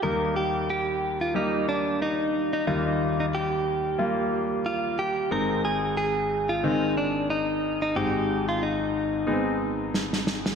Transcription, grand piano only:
0.03 2.64 D#2 soft
0.03 2.64 D#3 soft
0.03 1.04 G3 medium
0.03 1.04 A#3 medium
0.03 1.04 D#4 medium
1.34 2.36 G3 medium
1.34 2.36 A#3 soft
1.34 2.36 G4 medium
2.67 5.28 D#2 soft
2.67 5.28 D#3 soft
2.67 3.68 G3 medium
2.67 3.68 A#3 medium
2.67 3.68 F4 medium
3.99 5.00 G3 medium
3.99 5.00 A#3 medium
3.99 5.00 F4 medium
5.31 7.92 G#1 soft
5.31 7.92 G#2 soft
5.31 6.32 G#3 medium
5.31 6.32 C4 soft
5.31 6.32 D#4 medium
6.63 7.65 D#3 medium
6.63 7.64 G#3 medium
6.63 7.65 C4 medium
7.96 10.55 G#1 medium
7.96 10.55 G#2 soft
7.96 8.97 G#3 medium
7.96 8.97 C4 medium
7.96 8.97 D#4 medium
9.27 10.29 G#3 medium
9.27 9.35 B3 soft
9.27 10.28 D#4 medium
9.33 10.32 C4 soft

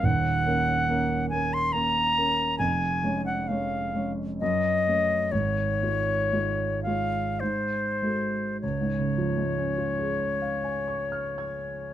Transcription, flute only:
0.05 1.29 F#5 loud
1.30 1.55 G#5 loud
1.54 1.74 C6 loud
1.73 2.58 A#5 loud
2.59 3.24 G#5 medium
3.26 3.49 F#5 medium
3.48 4.12 F5 medium
4.40 5.33 D#5 loud
5.32 6.83 C#5 medium
6.83 7.42 F5 medium
7.40 8.60 C5 medium
8.61 11.94 C#5 medium

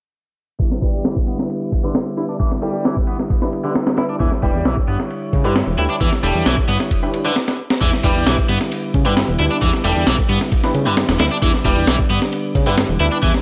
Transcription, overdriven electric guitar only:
0.59 0.68 E3 medium
0.82 1.04 G3 medium
1.04 1.13 E3 medium
1.27 1.36 B3 medium
1.84 1.92 D3 medium
2.17 2.23 E4 medium
2.29 2.34 D4 medium
2.40 2.49 E3 medium
2.62 2.84 G3 medium
2.85 2.94 E3 medium
3.07 3.16 B3 medium
3.64 3.72 D3 medium
3.97 4.03 E4 medium
4.09 4.14 D4 medium
4.20 4.29 E3 medium
4.42 4.64 G3 loud
4.65 4.74 E3 medium
4.88 4.97 B3 medium
5.45 5.53 D3 medium
5.78 5.83 E4 medium
5.90 5.95 D4 medium
6.01 6.10 E3 medium
6.23 6.45 G3 loud
6.46 6.55 E3 medium
6.68 6.77 B3 medium
7.25 7.36 D3 loud
7.81 7.90 E3 medium
8.04 8.25 G3 loud
8.26 8.35 E3 medium
8.49 8.58 B3 medium
9.05 9.14 D3 medium
9.39 9.44 E4 medium
9.51 9.56 D4 medium
9.62 9.70 E3 medium
9.84 10.06 G3 loud
10.07 10.15 E3 medium
10.29 10.38 B3 medium
10.86 10.94 D3 medium
11.20 11.25 E4 medium
11.31 11.36 D4 medium
11.42 11.51 E3 medium
11.65 11.86 G3 loud
11.87 11.96 E3 medium
12.10 12.19 B3 medium
12.67 12.75 D3 medium
13.00 13.05 E4 medium
13.12 13.17 D4 medium
13.22 13.31 E3 medium

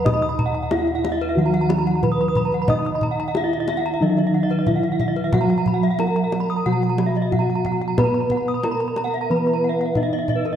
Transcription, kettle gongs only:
0.00 1.35 D#2 medium
0.05 1.99 D#5 medium
0.71 0.79 E4 soft
1.37 3.31 D#3 medium
2.03 2.11 E4 soft
2.69 4.63 D#5 medium
3.35 3.43 E4 soft
4.01 5.95 F#3 medium
4.68 4.76 E4 medium
5.34 7.28 F#4 medium
6.00 6.08 E4 soft
6.66 8.60 B2 medium
7.32 7.40 E4 soft
7.98 9.92 B4 medium
8.65 8.73 E4 soft
9.30 10.56 E3 medium
9.95 10.03 E4 soft

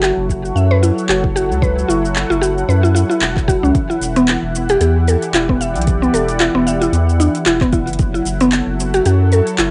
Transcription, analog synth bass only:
0.00 0.12 F#1 medium
0.17 0.51 F#1 medium
0.55 0.91 F#2 medium
1.09 1.52 F#1 medium
1.50 1.84 C#2 medium
1.89 2.25 F#1 medium
2.30 2.64 F#1 medium
2.68 3.04 F#2 medium
3.21 3.57 E1 medium
3.63 3.72 C#2 medium
4.01 4.37 E1 medium
4.43 4.76 E1 medium
4.81 5.16 E2 medium
5.33 5.77 E1 medium
5.75 6.09 B1 medium
6.13 6.49 E1 loud
6.54 6.88 E1 medium
6.93 7.29 E2 medium
7.46 7.89 E1 medium
7.88 8.21 F#1 medium
8.26 8.61 F#1 loud
8.67 9.01 F#1 medium
9.06 9.41 F#2 medium
9.59 9.71 F#1 loud

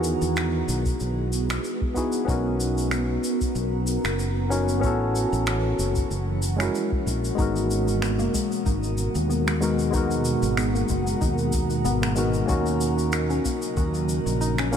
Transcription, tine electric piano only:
0.00 1.91 B3 medium
0.00 1.91 D#4 medium
0.00 1.92 E4 medium
0.00 1.93 F#4 medium
0.00 1.94 G#4 loud
1.94 2.23 B3 medium
1.94 2.24 D#4 medium
1.94 2.24 E4 medium
1.94 2.25 F#4 medium
1.94 2.25 G#4 medium
2.25 4.46 B3 medium
2.25 4.47 C#4 medium
2.25 4.48 D#4 medium
2.30 4.49 F#4 medium
2.30 4.50 A#4 medium
4.49 4.79 B3 medium
4.49 4.79 C#4 medium
4.49 4.80 D#4 medium
4.49 4.80 F#4 medium
4.49 4.80 A#4 medium
4.80 6.07 B3 medium
4.80 6.08 C#4 medium
4.80 6.09 E4 medium
4.85 6.10 F#4 medium
4.85 6.11 A4 loud
6.56 7.33 G#3 medium
6.56 7.34 C#4 medium
6.56 7.35 E4 medium
6.62 7.36 F#4 medium
6.62 7.37 A#4 medium
7.35 9.56 G#3 medium
7.35 9.57 B3 medium
7.35 9.58 D#4 medium
7.40 9.59 F#4 medium
7.40 9.60 A#4 loud
9.60 9.89 G#3 medium
9.60 9.90 B3 medium
9.60 9.90 D#4 medium
9.60 9.91 F#4 medium
9.60 9.91 A#4 medium
9.91 12.12 G#3 medium
9.91 12.13 B3 medium
9.91 12.14 D#4 medium
9.96 12.15 F#4 medium
9.96 12.15 A#4 medium
12.15 12.45 G#3 medium
12.15 12.45 B3 medium
12.15 12.46 D#4 medium
12.15 12.46 F#4 medium
12.15 12.46 A#4 medium
12.46 14.67 A#3 medium
12.46 14.68 C#4 medium
12.46 14.69 D#4 medium
12.51 14.70 F#4 medium
12.51 14.71 A#4 loud
14.71 14.77 A#3 medium
14.71 14.77 C#4 medium
14.71 14.77 D#4 medium
14.71 14.77 F#4 medium

